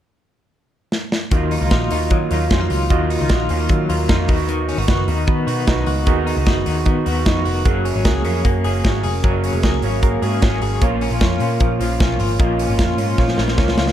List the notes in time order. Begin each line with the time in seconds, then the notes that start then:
0.92 snare
1.12 snare
1.31 D#2 D#3 F#3 A#3 D#4 F4 F#4 D#5, kick, closed hi-hat
1.51 D#4, open hi-hat
1.61 C#2 A#3 D#4 F4
1.71 A#1 F4 F#4 D#5, kick, snare, closed hi-hat
1.90 D#2 F#3 A#3 D#4 F4, open hi-hat
2.10 D#3 F#3 F4 F#4 D#5, kick, closed hi-hat
2.31 D#2 F#3 A#3 D#4 F4, open hi-hat
2.50 F2 F#3 A#3 C#4 D#4 F4 F#4 F5, kick, snare, closed hi-hat
2.60 D#4
2.70 C#2 F4, open hi-hat
2.90 D#2 D#3 F#3 A#3 D#4 F4 F#4 D#5, kick, closed hi-hat
3.10 D#4, open hi-hat
3.20 C#2 A#3 D#4 F4
3.29 A#1 F4 F#4 D#5, kick, snare, closed hi-hat
3.49 D#2 F#3 A#3 C#4 D#4 F4, open hi-hat
3.60 D#4
3.69 D#3 F#3 F4 F#4 A#4, kick, closed hi-hat
3.89 D#2 F#3 A#3 D#4 F4, open hi-hat
4.08 F2 F#3 A#3 D#4 F4 F#4 A#4, kick, snare, closed hi-hat
4.28 D#2 D#3 B3 D#4 F#4 B4, kick, open hi-hat
4.49 D#3, closed hi-hat
4.68 C#4, open hi-hat
4.77 G#1 B3 D#4 F#4
4.88 F#1 D#4 F#4 B4, kick, snare, closed hi-hat
5.07 D#2 D#3 B3 D#4 F#4, open hi-hat
5.27 D#3 B3 D#4 F#4 B4, kick, closed hi-hat
5.46 B2 D#3 B3 D#4 F#4, open hi-hat
5.67 B1 D#3 B3 D#4 F#4 B4, kick, snare, closed hi-hat
5.86 C#2 F#4, open hi-hat
6.06 D#2 D#3 B3 D#4 F#4 G#4, kick, closed hi-hat
6.26 D#4, open hi-hat
6.36 C#2 B3 D#4 F#4
6.46 D#4 F#4 B4, kick, snare, closed hi-hat
6.66 D#2 D#3 B3 D#4 F#4, open hi-hat
6.86 D#3 B3 D#4 F#4 B4, kick, closed hi-hat
7.06 D#2 D#3 B3 D#4 F#4, open hi-hat
7.25 F2 D#3 B3 D#4 F#4 B4, kick, snare, closed hi-hat
7.45 F1 F#4, open hi-hat
7.65 F#1 F#3 A#3 C#4 F#4 G#4 A#4, kick, closed hi-hat
7.85 C#4, open hi-hat
7.95 G#1 A#3 C#4 G#4
8.05 C#2 F#4 G#4 A#4, kick, snare, closed hi-hat
8.24 F2 F#3 A#3 C#4 G#4, open hi-hat
8.45 F#2 A#3 F#4 G#4 C#5, kick, closed hi-hat
8.64 F#1 F#3 A#3 C#4 G#4, open hi-hat
8.84 G#1 F#3 A#3 C#4 F#4 G#4 A#4, kick, snare, closed hi-hat
9.04 F1 G#4, open hi-hat
9.23 F#1 F#3 A#3 C#4 F#4 G#4 A#4, kick, closed hi-hat
9.44 C#4, open hi-hat
9.53 F1 A#3 C#4 G#4
9.63 C#2 F#4 G#4 A#4, kick, snare, closed hi-hat
9.82 G#1 F#3 A#3 C#4 G#4, open hi-hat
10.03 A#3 F#4 G#4 A#4, kick, closed hi-hat
10.22 G#2 F#3 A#3 C#4 G#4, open hi-hat
10.42 G#1 F#3 A#3 C#4 F#4 G#4 C#5, kick, snare, closed hi-hat
10.62 G#1 G#4, open hi-hat
10.81 A#1 A#2 F3 A#3 C#4 F4 A#4 C#5, kick, closed hi-hat
11.01 C#4, open hi-hat
11.10 A#1 A#3 C#4 F4
11.21 F2 F4 A#4 C#5, kick, snare, closed hi-hat
11.40 A#2 F3 A#3 C#4 F4, open hi-hat
11.60 A#2 F3 F4 A#4 C#5, kick, closed hi-hat
11.79 A#1 F3 A#3 C#4 F4, open hi-hat
12.00 B1 F3 A#3 C#4 F4 A#4 C#5, kick, snare, closed hi-hat
12.19 G#1 F4, open hi-hat
12.39 A#1 A#2 F3 A#3 C#4 F4 A#4 D#5, kick, closed hi-hat
12.59 C#4, open hi-hat
12.68 G#1 A#3 C#4 F4
12.78 F2 F4 A#4 C#5, kick, snare, closed hi-hat
12.98 G#2 F3 A#3 C#4 F4, open hi-hat
13.18 A#2 F3 F4 A#4 C#5, kick, snare
13.28 snare
13.37 A#1 F3 A#3 C#4 F4, snare
13.48 snare
13.57 C#2 F3 A#3 C#4 F4 A#4 C#5, kick, snare
13.68 snare
13.77 C#2 F4, snare
13.88 snare